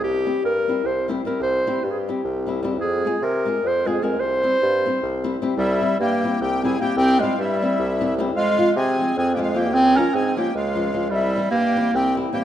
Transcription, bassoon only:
\new Staff \with { instrumentName = "Bassoon" } { \clef bass \time 7/8 \tempo 4 = 152 c,4 g,4 c,4. | c,4 g,4 c,4. | f,4 c4 f,4. | c,4 g,4 c,4. |
c,4 g,4 c,4. | c,4 g,4 c,4. | f,4 c4 f,4. | des,4 aes,4 des,4. |
c,4 g,4 c,4. | }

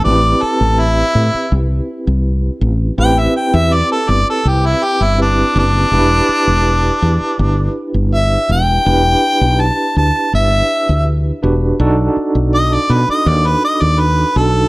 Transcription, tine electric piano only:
\new Staff \with { instrumentName = "Tine electric piano" } { \time 4/4 \key e \minor \tempo 4 = 82 <c' e' g' b'>1 | <c' e' g' b'>2. <c' e' g' b'>4 | <d' e' g' b'>1 | <d' e' g' b'>2.~ <d' e' g' b'>8 <d' fis' g' b'>8 |
<d' dis' fis' a'>2.~ <d' dis' fis' a'>8 <d' dis' fis' a'>8 | }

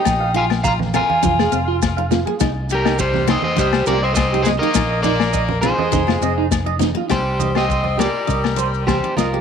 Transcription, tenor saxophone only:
\new Staff \with { instrumentName = "Tenor saxophone" } { \time 4/4 \key c \minor \tempo 4 = 102 ees'8 f'8 f'8 f'2 r8 | r8 g8 g8 c'16 c'16 g8 bes16 c'16 c'8 aes16 bes16~ | bes8 bes4 aes4. r4 | g8. c'8. g4. g8 f8 | }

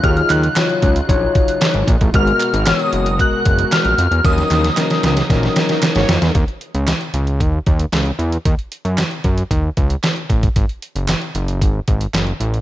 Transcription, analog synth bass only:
\new Staff \with { instrumentName = "Analog synth bass" } { \clef bass \time 4/4 \key ees \minor \tempo 4 = 114 ees,8 ees,8 r8 des,8 bes,,8 r8. aes,,16 bes,,16 a,,16 | aes,,8 r16 aes,,8 r16 ges,,8. r16 ges,,8 r16 bes,,16 f,16 fes,16 | ees,8 ees,8 r8 des,8 bes,,8 r8. aes,,16 f,16 fes,16 | ees,16 r8 des,8 r16 des,8 ees,8 ees,8 des,8 fes,8 |
ees,16 r8 ges,8 r16 ges,8 ees,8 des,8 r8 a,,8 | aes,,16 r8 ges,,8 r16 ges,,8 aes,,8 aes,,8 ges,,8 a,,8 | }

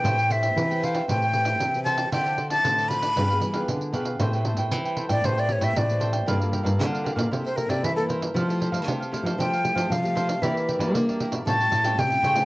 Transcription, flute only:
\new Staff \with { instrumentName = "Flute" } { \time 4/4 \key a \minor \tempo 4 = 116 g''8 e''4 f''8 g''4. a''8 | g''8. a''8. b''4. r4 | r4. r16 d''16 c''16 d''16 des''16 e''16 d''4 | r2 r16 c''16 bes'16 d''16 e''16 a'16 r8 |
r2 g''4 f''4 | e''8 r4. a''4 g''4 | }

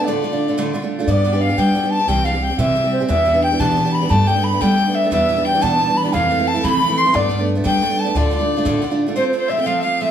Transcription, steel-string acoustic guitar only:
\new Staff \with { instrumentName = "Steel-string acoustic guitar" } { \time 6/8 \key g \mixolydian \tempo 4. = 119 <d, a, d a d' f'>8 <d a d' f'>16 <d a d' f'>8 <d a d' f'>16 <d, a, d a d' f'>8 <d a d' f'>16 <d a d' f'>8 <d a d' f'>16 | <g b d' g'>8 <g b d' g'>16 <b d' g'>8 <b d' g'>16 <g b d' g'>8 <g b d' g'>16 <b d' g'>8 <b d' g'>16 | <c e g c' g'>8 <e g c' g'>16 <g c' g'>8 <g c' g'>16 <c e g c' g'>8 <e g c' g'>16 <g c' g'>8 <g c' g'>16 | <e, b, e b d' g'>8 <e b d' g'>16 <e b d' g'>8 <e b d' g'>16 <e, b, e b d' g'>8 <e b d' g'>16 <e b d' g'>8 <e b d' g'>16 |
<g a b d'>8 <g a b d'>16 <a b d'>8 <a b d'>16 <g a b d'>8 <g a b d'>16 <a b d'>8 <a b d'>16 | <e, b, e g b d'>8 <e g b d'>16 <e g b d'>8 <e g b d'>16 <e, b, e g b d'>8 <e g b d'>16 <e g b d'>8 <e g b d'>16 | <f, c e a c' e'>8 <e a c' e'>16 <e a c' e'>8 <e a c' e'>16 <f, c e a c' e'>8 <e a c' e'>16 <e a c' e'>8 <e a c' e'>16 | <g a b d'>8 <g a b d'>16 <a b d'>8 <a b d'>16 <g a b d'>8 <g a b d'>16 <a b d'>8 <a b d'>16 |
<d, a, d a d' f'>8 <d a d' f'>16 <d a d' f'>8 <d a d' f'>16 <d, a, d a d' f'>8 <d a d' f'>16 <d a d' f'>8 <d a d' f'>16 | \key f \major <f a c' f'>8 <f a c' f'>8 <f a c' f'>16 <a c' f'>16 <f a c' f'>8 <f a c' f'>8 <f a c' f'>16 r16 | }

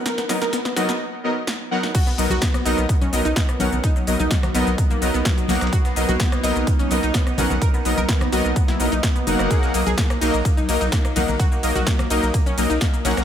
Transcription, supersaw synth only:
\new Staff \with { instrumentName = "Supersaw synth" } { \time 4/4 \key b \major \tempo 4 = 127 r8 <fis b dis' ais' dis''>8 r8 <fis b dis' ais' dis''>8 r8 <fis b dis' ais' dis''>8 r8 <fis b dis' ais' fis''>8 | r8 <fis b dis' ais' dis''>8 r8 <fis b dis' ais' dis''>8 r8 <fis b dis' ais' dis''>8 r8 <fis b dis' ais' fis''>8 | r8 <fis b dis' ais' dis''>8 r8 <fis b dis' ais' dis''>8 r8 <fis b dis' ais' dis''>8 r8 <fis b dis' ais' fis''>8 | r8 <fis b dis' ais' dis''>8 r8 <fis b dis' ais' dis''>8 r8 <fis b dis' ais' dis''>8 r8 <fis b dis' ais' fis''>8 |
r8 <fis b dis' ais' dis''>8 r8 <fis b dis' ais' dis''>8 r8 <fis b dis' ais' dis''>8 r8 <fis ais dis' ais' fis''>8~ | <fis ais dis' ais' fis''>8 <fis ais dis' ais' dis''>8 r8 <fis ais dis' ais' dis''>8 r8 <fis ais dis' ais' dis''>8 r8 <fis ais dis' ais' fis''>8 | r8 <fis ais dis' ais' dis''>8 r8 <fis ais dis' ais' dis''>8 r8 <fis ais dis' ais' dis''>8 r8 <fis ais dis' ais' fis''>8 | }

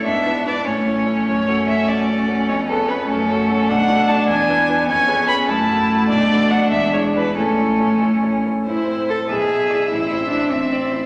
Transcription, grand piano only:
\new Staff \with { instrumentName = "Grand piano" } { \time 6/8 \key a \major \tempo 4. = 99 gis,8 <d' e' b'>8 <d' e' b'>8 a,8 <cis' e' a'>8 <cis' e' a'>8 | fis,8 <cis' fis' a'>8 <cis' fis'>8 <cis' fis' a'>8 <cis' fis' a'>8 <cis' fis' a'>8 | eis,8 <cis' gis' b'>8 <cis' gis' b'>8 fis,8 <cis' fis' a'>8 <cis' fis' a'>8 | b,,8 <d' fis' a'>8 <d' fis' a'>8 e,8 <d' e' b'>8 <d' e' b'>8 |
eis,8 <cis' gis' b'>8 <cis' gis' b'>8 fis,8 <e' fis' a'>8 <e' fis' a'>8 | b,,8 <d' fis' a'>8 <d' fis' a'>8 e,8 <d' e' gis'>8 <d' e' gis'>8 | a,8 <cis' e' a'>8 <cis' e' a'>8 <cis' e' a'>8 <cis' e' a'>8 <cis' e' a'>8 | \key a \minor a,8 c'8 <e' a'>8 b,,8 b8 <e' d''>8 |
a,,8 c'8 e'8 a,,8 c'8 e'8 | }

